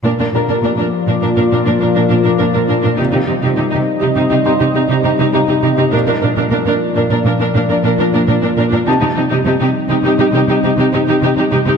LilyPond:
<<
  \new Staff \with { instrumentName = "Grand piano" } { \time 5/4 \key bes \major \tempo 4 = 102 r8 <bes' bes''>2. r4. | r2 r8 c'''4. bes''4~ | bes''2 r2. | a''2. r2 | }
  \new Staff \with { instrumentName = "Viola section" } { \time 5/4 \key bes \major <d' bes'>16 <d' bes'>16 <d' bes'>16 <d' bes'>16 <d' bes'>16 <d' bes'>16 r16 <d' bes'>16 <d' bes'>16 <d' bes'>16 <d' bes'>16 <d' bes'>16 <d' bes'>16 <d' bes'>16 <d' bes'>16 <d' bes'>16 <d' bes'>16 <d' bes'>16 <d' bes'>16 <d' bes'>16 | <ees' g'>16 <ees' g'>16 <ees' g'>16 <ees' g'>16 <ees' g'>16 <ees' g'>16 r16 <ees' g'>16 <ees' g'>16 <ees' g'>16 <ees' g'>16 <ees' g'>16 <ees' g'>16 <ees' g'>16 <ees' g'>16 <ees' g'>16 <ees' g'>16 <ees' g'>16 <ees' g'>16 <ees' g'>16 | <d' bes'>16 <d' bes'>16 <d' bes'>16 <d' bes'>16 <d' bes'>16 <d' bes'>16 r16 <d' bes'>16 <d' bes'>16 <d' bes'>16 <d' bes'>16 <d' bes'>16 <d' bes'>16 <d' bes'>16 <d' bes'>16 <d' bes'>16 <d' bes'>16 <d' bes'>16 <d' bes'>16 <d' bes'>16 | <ees' g'>16 <ees' g'>16 <ees' g'>16 <ees' g'>16 <ees' g'>16 <ees' g'>16 r16 <ees' g'>16 <ees' g'>16 <ees' g'>16 <ees' g'>16 <ees' g'>16 <ees' g'>16 <ees' g'>16 <ees' g'>16 <ees' g'>16 <ees' g'>16 <ees' g'>16 <ees' g'>16 <ees' g'>16 | }
  \new Staff \with { instrumentName = "Synth drone" } { \time 5/4 \key bes \major <f bes f' d''>1~ <f bes f' d''>4 | <g c' ees' ees''>1~ <g c' ees' ees''>4 | <f bes f' d''>1~ <f bes f' d''>4 | <g c' ees' ees''>1~ <g c' ees' ees''>4 | }
  \new Staff \with { instrumentName = "Cello section" } { \clef bass \time 5/4 \key bes \major bes,16 bes,16 bes,16 bes,16 bes,16 bes,16 r16 bes,16 bes,16 bes,16 bes,16 bes,16 bes,16 bes,16 bes,16 bes,16 bes,16 bes,16 bes,16 bes,16 | c16 c16 c16 c16 c16 c16 r16 c16 c16 c16 c16 c16 c16 c16 c16 c16 c16 c16 c16 c16 | bes,16 bes,16 bes,16 bes,16 bes,16 bes,16 r16 bes,16 bes,16 bes,16 bes,16 bes,16 bes,16 bes,16 bes,16 bes,16 bes,16 bes,16 bes,16 bes,16 | c16 c16 c16 c16 c16 c16 r16 c16 c16 c16 c16 c16 c16 c16 c16 c16 c16 c16 c16 c16 | }
>>